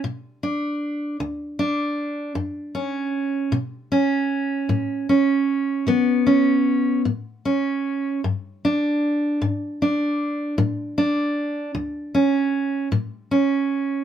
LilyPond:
\new Staff \with { instrumentName = "Steel-string acoustic guitar" } { \time 6/8 \key a \mixolydian \tempo 4. = 51 << { r8 d'4 r8 d'4 | r8 cis'4 r8 cis'4 | r8 cis'4 b8 cis'4 | r8 cis'4 r8 d'4 |
r8 d'4 r8 d'4 | r8 cis'4 r8 cis'4 | } \\ { b,4 r8 d,4 r8 | fis,4 r8 b,4 r8 | a,4 r8 e4 r8 | a,4 r8 g,4 r8 |
gis,4 r8 a,4 r8 | d,4 r8 a,4 r8 | } >> }